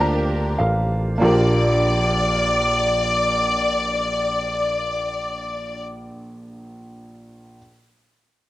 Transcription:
Already playing: picked electric bass D2, grand piano A#3 D4 F4 G4 C5, string section D4 G4 A#4
0.00 grand piano A#5
0.58 picked electric bass A1, grand piano F5
1.18 grand piano A#1 A#3 D4 F4, picked electric bass A#1
1.23 grand piano G4 A#4, string section D5

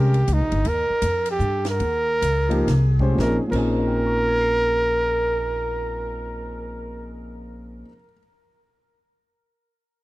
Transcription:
Already playing: upright bass C2, grand piano G#3 C#4 G4 A#4, trumpet G4
0.14 ride
0.28 upright bass C#2, hi-hat pedal, ride
0.33 trumpet D#4
0.40 upright bass A#1
0.52 upright bass G1, ride
0.65 upright bass D#2, trumpet A#4, ride
0.90 muted upright bass stroke
1.02 upright bass F2, hi-hat pedal, ride
1.26 ride
1.31 trumpet G4
1.39 upright bass G2, hi-hat pedal
1.65 snare, ride
1.70 trumpet A#4
1.80 upright bass D#2, ride
2.22 upright bass C#2, hi-hat pedal, ride
2.49 grand piano F3 A#3 D#4 G4, ride
2.68 upright bass C2, snare, ride
2.99 grand piano G#3 C#4 G4 C5, kick
3.13 grand piano A#2 F3
3.18 upright bass A#1, grand piano C4 C#4, trumpet A#4, kick, snare
3.23 grand piano D#4 G#4
3.47 grand piano A#2 F3
3.52 upright bass A#1, grand piano C4 C#4, trumpet A#4, kick, crash
3.56 grand piano D#4 G#4
3.72 grand piano C5
3.79 grand piano D#5
3.87 grand piano G5
3.96 grand piano A#5
4.06 grand piano C#6
4.17 grand piano F6
4.28 grand piano G#6
4.41 grand piano C7

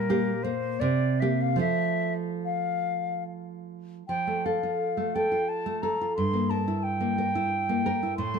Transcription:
Already playing: nylon-string guitar A#2 G3, flute A#4
0.10 nylon-string guitar A#3 G4
0.43 nylon-string guitar A#3, flute C5
0.80 nylon-string guitar C3, flute D5
1.20 nylon-string guitar A#3 G4, flute E5
1.41 flute F5
1.56 nylon-string guitar F3 A3 F4
1.60 flute E5
2.44 flute F5
4.08 nylon-string guitar F3, flute G5
4.27 nylon-string guitar A3
4.45 nylon-string guitar A4, flute F5
4.63 nylon-string guitar F4
4.97 nylon-string guitar A3
5.15 nylon-string guitar A4, flute G5
5.32 nylon-string guitar F4
5.49 flute A5
5.66 nylon-string guitar A3
5.82 nylon-string guitar A4, flute A#5
6.01 nylon-string guitar F4
6.17 nylon-string guitar G2, flute C6
6.33 nylon-string guitar A#3
6.50 nylon-string guitar A#4, flute A5
6.68 nylon-string guitar E4
6.83 flute G5
7.00 nylon-string guitar A#3
7.18 nylon-string guitar A#4
7.35 nylon-string guitar E4
7.69 nylon-string guitar A#3
7.86 nylon-string guitar A#4
8.03 nylon-string guitar E4
8.17 nylon-string guitar A2, flute C6
8.34 nylon-string guitar A3

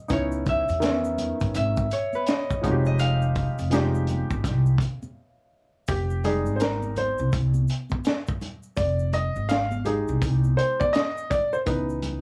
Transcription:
Already playing: harp D#5
0.08 upright bass C#2, grand piano B3 C#4 D#4 E4, kick, closed hi-hat, shaker
0.13 harp C#5
0.32 shaker
0.46 harp E5, kick, closed hi-hat, low conga, shaker
0.68 upright bass E2, closed hi-hat, shaker
0.80 grand piano D#3 B3 C#4, snare, closed hi-hat, shaker
1.04 shaker
1.18 closed hi-hat, high conga, low conga, shaker
1.40 upright bass G#2, kick, closed hi-hat, shaker
1.54 upright bass G#1, harp E5, closed hi-hat, shaker
1.77 kick, shaker
1.91 harp C#5, closed hi-hat, shaker
2.13 harp B4, high conga, shaker
2.26 harp D#5, snare, closed hi-hat, shaker
2.51 kick, shaker
2.62 upright bass F1, grand piano F3 G#3 D#4 F#4, kick, closed hi-hat, low conga, shaker
2.72 grand piano G4
2.85 harp D#5, shaker
2.99 harp F5, closed hi-hat, shaker
3.22 shaker
3.35 kick, closed hi-hat, low conga, shaker
3.58 upright bass F1, closed hi-hat, shaker
3.70 grand piano F3 G#3 D#4 G4, snare, closed hi-hat, shaker
3.95 shaker
4.07 closed hi-hat, high conga, low conga, shaker
4.30 upright bass G#1, kick, shaker
4.44 upright bass C2, kick, snare, closed hi-hat, shaker
4.66 shaker
4.78 kick, closed hi-hat, shaker
5.03 high conga, shaker
5.87 upright bass F1, grand piano G4, kick, closed hi-hat, shaker
6.10 shaker
6.24 grand piano G3 G#3 D#4 G#4, closed hi-hat, low conga, shaker
6.46 upright bass G#1, shaker
6.56 grand piano C5, closed hi-hat
6.60 grand piano A#4, snare, shaker
6.82 high conga, shaker
6.96 grand piano C5, closed hi-hat, high conga, low conga, shaker
7.18 upright bass C2, shaker
7.32 upright bass C2, kick, closed hi-hat, shaker
7.54 high conga, shaker
7.68 closed hi-hat, shaker
7.90 kick, high conga, shaker
8.04 snare, closed hi-hat, shaker
8.27 kick, shaker
8.41 closed hi-hat, low conga, shaker
8.63 shaker
8.76 upright bass F1, grand piano D5, kick, closed hi-hat, shaker
8.99 shaker
9.13 grand piano D#5, closed hi-hat, low conga, shaker
9.36 upright bass G#1, shaker
9.49 grand piano F5, snare, closed hi-hat, shaker
9.71 high conga, shaker
9.85 grand piano G#3 D#4 G4 G#4, closed hi-hat, high conga, low conga, shaker
10.08 upright bass C2, shaker
10.22 upright bass C2, kick, closed hi-hat, shaker
10.44 high conga, shaker
10.57 grand piano C5, closed hi-hat, shaker
10.80 grand piano D5, kick, high conga, shaker
10.93 grand piano D#5, snare, closed hi-hat, shaker
11.18 shaker
11.30 grand piano D5, kick, closed hi-hat, low conga, shaker
11.53 grand piano C5, shaker
11.66 upright bass C#2, grand piano E3 B3 D#4 B4, kick, closed hi-hat, shaker
11.89 shaker
12.02 closed hi-hat, low conga, shaker

